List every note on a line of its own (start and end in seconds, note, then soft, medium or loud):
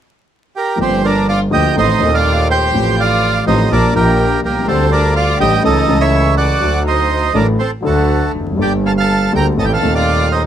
0.56 0.78 G4 soft
0.56 0.79 A#4 medium
0.76 1.48 G1 medium
0.76 1.49 G1 medium
0.76 1.48 G2 medium
0.76 1.47 F3 soft
0.76 1.48 A#3 soft
0.76 1.49 D4 medium
0.80 1.03 C4 medium
0.80 1.50 G4 medium
0.80 1.03 G4 medium
0.80 1.06 C5 medium
1.04 1.28 D4 medium
1.04 1.27 A#4 medium
1.04 1.27 D5 medium
1.28 1.41 F4 medium
1.28 1.39 D5 medium
1.28 1.40 F5 medium
1.51 1.72 D2 medium
1.51 1.73 D2 medium
1.51 1.72 D3 medium
1.51 1.72 F3 medium
1.51 1.72 A#3 medium
1.51 1.72 D4 medium
1.51 1.73 G4 medium
1.51 1.76 G4 medium
1.51 1.75 D#5 medium
1.51 1.76 G5 medium
1.75 1.97 A1 medium
1.75 1.97 A2 medium
1.75 1.97 D#3 medium
1.75 1.97 A3 medium
1.75 1.97 C4 medium
1.75 2.10 D#4 medium
1.75 1.97 A4 medium
1.75 2.11 C5 medium
1.75 2.15 D#5 medium
1.98 2.70 D#1 medium
1.98 2.70 D#2 medium
1.98 2.69 D#3 medium
1.98 2.70 A3 medium
1.98 2.70 C4 medium
1.98 2.71 A4 medium
2.14 2.48 F4 medium
2.14 2.48 D5 medium
2.14 2.48 F5 medium
2.50 2.95 G4 medium
2.50 2.95 C5 medium
2.50 3.00 G5 medium
2.71 3.43 A1 medium
2.71 3.43 A2 medium
2.71 3.42 F3 medium
2.71 3.43 A3 soft
2.71 3.43 C4 medium
2.71 3.44 G4 medium
2.98 3.43 F4 medium
2.98 3.44 D5 medium
2.98 3.45 F5 medium
3.46 3.67 A1 medium
3.46 3.67 A2 medium
3.46 3.67 F3 medium
3.46 3.67 A3 medium
3.46 3.67 C4 medium
3.46 3.70 D#4 medium
3.46 3.67 G4 medium
3.46 3.69 C5 medium
3.46 3.72 D#5 medium
3.71 3.91 A#1 medium
3.71 3.92 A#1 medium
3.71 3.91 A#2 medium
3.71 3.91 F3 medium
3.71 3.91 A#3 medium
3.71 3.91 D4 medium
3.71 3.94 D4 medium
3.71 3.91 G4 medium
3.71 3.94 A#4 medium
3.71 3.94 D5 medium
3.93 4.43 A#1 medium
3.93 4.64 A#1 medium
3.93 4.64 A#2 medium
3.93 4.63 F3 medium
3.93 4.64 A#3 medium
3.93 4.40 A#3 medium
3.93 4.64 D4 medium
3.93 4.40 G4 medium
3.93 4.40 A#4 medium
3.98 4.65 G4 medium
4.44 4.67 C2 medium
4.44 4.66 A#3 medium
4.44 4.67 G4 medium
4.44 4.67 A#4 medium
4.51 4.56 B1 soft
4.57 4.62 C2 soft
4.63 4.68 C#2 medium
4.67 5.36 D2 medium
4.67 5.37 D2 medium
4.67 5.37 D3 medium
4.67 5.36 G3 medium
4.67 5.37 A3 medium
4.67 4.90 C4 medium
4.67 5.37 D4 medium
4.67 4.90 A4 medium
4.67 5.38 A4 medium
4.67 4.92 C5 medium
4.92 5.15 D4 medium
4.92 5.15 A#4 medium
4.92 5.14 D5 medium
5.15 5.38 F4 medium
5.15 5.39 D5 medium
5.15 5.38 F5 medium
5.39 5.60 A1 medium
5.39 5.60 A2 medium
5.39 5.60 G3 medium
5.39 5.61 A3 medium
5.39 5.61 D4 medium
5.39 5.62 G4 medium
5.39 5.61 A4 medium
5.39 5.63 D#5 medium
5.39 5.63 G5 medium
5.64 5.85 C#2 medium
5.64 5.84 C#3 medium
5.64 5.85 E3 medium
5.64 5.85 A3 medium
5.64 5.85 C#4 medium
5.64 5.99 D#4 medium
5.64 5.85 A4 medium
5.64 5.99 A4 medium
5.64 6.02 D#5 medium
5.86 6.58 C#2 medium
5.86 6.59 C#2 medium
5.86 6.58 C#3 medium
5.86 6.57 E3 medium
5.86 6.58 A3 medium
5.86 6.59 C#4 medium
5.91 6.59 A4 medium
6.00 6.35 E4 medium
6.00 6.35 C#5 medium
6.00 6.35 E5 medium
6.37 6.83 F#4 medium
6.37 6.83 D5 medium
6.37 6.83 F#5 medium
6.60 7.31 D2 medium
6.60 7.32 D2 medium
6.60 7.31 F#3 medium
6.60 7.31 A3 medium
6.60 7.32 F#4 medium
6.60 7.32 A4 medium
6.85 7.31 D#4 medium
6.85 7.33 C5 medium
6.85 7.37 D#5 medium
7.33 7.55 A1 medium
7.33 7.56 A1 medium
7.33 7.55 A2 medium
7.33 7.55 F#3 medium
7.33 7.55 A3 medium
7.33 7.55 D4 medium
7.33 7.46 D4 medium
7.33 7.55 A4 medium
7.33 7.47 A#4 medium
7.33 7.46 D5 medium
7.59 7.71 C4 medium
7.59 7.71 A4 medium
7.59 7.70 C5 medium
7.81 8.55 D2 medium
7.81 8.33 D2 medium
7.81 8.55 D3 medium
7.81 8.54 F#3 medium
7.81 8.54 A3 medium
7.81 8.55 D4 medium
7.85 8.31 A3 soft
7.85 8.32 F#4 soft
7.85 8.56 A4 medium
7.85 8.32 A4 medium
8.34 8.59 F1 medium
8.41 8.47 E2 soft
8.46 8.53 F2 soft
8.52 8.59 F#2 soft
8.52 9.28 G3 medium
8.58 9.29 G1 medium
8.58 9.30 G1 medium
8.58 9.29 G2 medium
8.58 9.29 A#3 soft
8.58 9.30 D4 soft
8.58 9.30 A4 medium
8.58 8.72 D5 medium
8.62 8.73 G4 medium
8.62 8.73 G5 medium
8.86 8.91 A4 medium
8.86 8.91 F5 medium
8.86 8.93 A5 medium
8.98 9.33 A4 medium
8.98 9.32 F5 medium
8.98 9.33 A5 medium
9.32 9.54 D2 medium
9.32 9.54 D3 medium
9.32 9.54 G3 medium
9.32 9.54 A#3 medium
9.32 9.54 D4 medium
9.32 9.54 A4 medium
9.32 9.46 A#4 medium
9.32 9.46 G5 medium
9.37 9.47 A#5 medium
9.56 9.78 A1 medium
9.56 9.79 A1 medium
9.56 9.78 A2 medium
9.56 9.78 D#3 medium
9.56 9.78 A3 soft
9.56 9.78 C4 medium
9.56 9.78 A4 medium
9.56 9.64 A4 medium
9.56 9.65 D#5 medium
9.56 9.65 A5 medium
9.65 9.72 G4 medium
9.65 9.72 G5 medium
9.73 9.95 A4 medium
9.73 9.94 F5 medium
9.73 9.94 A5 medium
9.80 10.46 D#1 medium
9.80 10.46 D#2 medium
9.80 10.46 D#3 medium
9.80 10.46 A3 medium
9.80 10.46 C4 medium
9.80 10.46 A4 medium
9.95 10.30 F4 medium
9.95 10.29 D5 medium
9.95 10.33 F5 medium
10.31 10.44 D#4 medium
10.31 10.42 C5 soft
10.31 10.43 D#5 medium